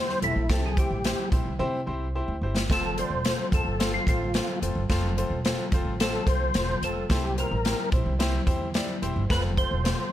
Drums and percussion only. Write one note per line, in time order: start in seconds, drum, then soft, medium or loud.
0.09 snare soft
0.22 closed hi-hat medium
0.49 kick loud
0.49 snare loud
0.49 closed hi-hat medium
0.77 kick loud
0.77 closed hi-hat medium
1.04 snare loud
1.04 closed hi-hat medium
1.32 kick medium
1.32 closed hi-hat medium
2.57 snare medium
2.70 kick loud
2.70 snare medium
2.70 closed hi-hat medium
2.98 closed hi-hat medium
3.25 snare loud
3.25 closed hi-hat medium
3.52 kick medium
3.52 closed hi-hat medium
3.80 snare loud
3.80 closed hi-hat loud
4.07 kick medium
4.07 closed hi-hat medium
4.34 snare loud
4.34 closed hi-hat medium
4.63 closed hi-hat medium
4.90 kick loud
4.90 snare loud
4.90 closed hi-hat medium
5.18 closed hi-hat medium
5.45 snare loud
5.45 closed hi-hat medium
5.72 kick medium
5.72 closed hi-hat medium
6.00 snare loud
6.00 closed hi-hat loud
6.27 kick medium
6.27 closed hi-hat medium
6.54 snare loud
6.54 closed hi-hat medium
6.83 closed hi-hat medium
7.10 kick loud
7.10 snare loud
7.10 closed hi-hat medium
7.38 closed hi-hat medium
7.65 snare loud
7.65 closed hi-hat medium
7.92 kick medium
7.92 closed hi-hat medium
8.20 snare loud
8.20 closed hi-hat loud
8.47 kick medium
8.47 closed hi-hat medium
8.74 snare loud
8.74 closed hi-hat medium
9.03 closed hi-hat medium
9.30 kick loud
9.30 snare loud
9.30 closed hi-hat medium
9.57 kick medium
9.57 closed hi-hat medium
9.85 snare loud
9.85 closed hi-hat medium